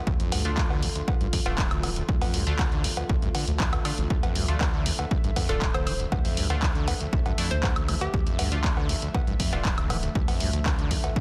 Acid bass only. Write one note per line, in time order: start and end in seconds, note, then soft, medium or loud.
0.07 0.14 D2 medium
0.20 0.34 F2 medium
0.32 0.43 G2 medium
0.45 0.52 D2 loud
0.57 0.65 D2 medium
0.70 0.84 D3 medium
0.83 0.90 D2 loud
0.96 1.02 D2 medium
1.08 1.15 D2 medium
1.21 1.27 G2 medium
1.33 1.40 F2 medium
1.58 1.65 G2 medium
1.71 1.85 D2 loud
1.83 1.90 F3 loud
1.96 2.03 D2 medium
2.09 2.16 D2 medium
2.22 2.35 F2 medium
2.34 2.45 G2 medium
2.47 2.54 D2 loud
2.59 2.66 D2 medium
2.72 2.86 D3 medium
2.84 2.91 D2 loud
2.97 3.04 D2 medium
3.10 3.17 D2 medium
3.22 3.29 G2 medium
3.35 3.45 D3 medium
3.48 3.52 D2 medium
3.60 3.67 F2 medium
3.73 3.77 D2 medium
3.85 3.92 D3 medium
3.98 4.08 D2 medium
4.23 4.37 F2 medium
4.36 4.46 G2 medium
4.48 4.55 D2 loud
4.61 4.68 D2 medium
4.74 4.87 D3 medium
4.86 4.93 D2 loud
4.99 5.06 D2 medium
5.11 5.18 D2 medium
5.24 5.31 G2 medium
5.36 5.51 F2 medium
5.49 5.56 D2 medium
5.62 5.69 G2 medium
5.74 5.88 D2 loud
5.87 5.94 F3 loud
6.00 6.06 D2 medium
6.12 6.19 D2 medium
6.25 6.39 F2 medium
6.37 6.48 G2 medium
6.50 6.57 D2 loud
6.62 6.69 D2 medium
6.75 6.89 D3 medium
6.88 6.95 D2 loud
7.00 7.07 D2 medium
7.13 7.20 D2 medium
7.26 7.32 G2 medium
7.38 7.52 F2 medium
7.51 7.58 D2 medium
7.63 7.70 G2 medium
7.76 7.90 D2 loud
7.88 7.95 F3 loud
8.01 8.08 D2 medium
8.14 8.21 D2 medium
8.27 8.40 F2 medium
8.39 8.49 G2 medium
8.52 8.59 D2 loud
8.64 8.71 D2 medium
8.77 8.91 D3 medium
8.89 8.96 D2 loud
9.02 9.09 D2 medium
9.14 9.22 D2 medium
9.27 9.34 G2 medium
9.39 9.54 F2 medium
9.52 9.59 D2 medium
9.65 9.72 G2 medium
9.78 9.91 D2 loud
9.90 9.97 F3 loud
10.03 10.10 D2 medium
10.15 10.22 D2 medium
10.28 10.42 F2 medium
10.40 10.51 G2 medium
10.53 10.60 D2 loud
10.66 10.73 D2 medium
10.79 10.92 D3 medium
10.91 10.98 D2 loud
11.04 11.11 D2 medium
11.16 11.21 D2 medium